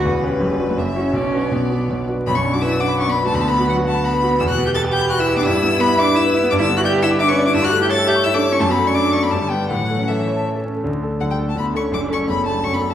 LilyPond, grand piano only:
\new Staff \with { instrumentName = "Grand piano" } { \time 3/4 \key b \minor \tempo 4 = 168 <e,, e,>8 <cis' g' b'>8 <fis,, fis,>8 <d' fis' b'>8 <fis,, fis,>8 <e' fis' cis''>8 | <b,, b,>8 <d' fis' b'>8 <b,, b,>8 <d' fis' b'>8 <b,, b,>8 <d' fis' b'>8 | b,,16 fis,16 d'16 fis'16 b'16 d''16 fis''16 b''16 fis''16 d''16 b'16 fis'16 | d,16 d16 b16 fis'16 b'16 fis'16 fis''16 b''16 fis''16 b'16 fis'16 b16 |
e,16 b,16 b16 g'16 b'16 g'16 g''16 b''16 g''16 b'16 g'16 b16 | g,16 g16 b16 e'16 b'16 e'16 e''16 b''16 e''16 b'16 e'16 b16 | \key d \major g,16 d16 b16 e'16 d''16 b'16 e''16 d'''16 e''16 b'16 d''16 e'16 | g,16 g16 a16 e'16 cis''16 a'16 e''16 cis'''16 e''16 a'16 cis''16 e'16 |
fis,16 fis16 a16 d'16 d''16 a'16 d''16 d'''16 g,16 d16 b16 d'16 | a,16 e16 a16 cis'16 a'16 cis'16 cis''16 a''16 cis''16 a'16 cis'16 a16 | <d, d>8 <a d' a'>8 <d, d>8 <a d' a'>8 <d, d>8 <a d' a'>8 | <fis,, fis,>8 <a d' a'>8 <fis,, fis,>8 <a d' a'>8 <fis,, fis,>8 <a d' a'>8 | }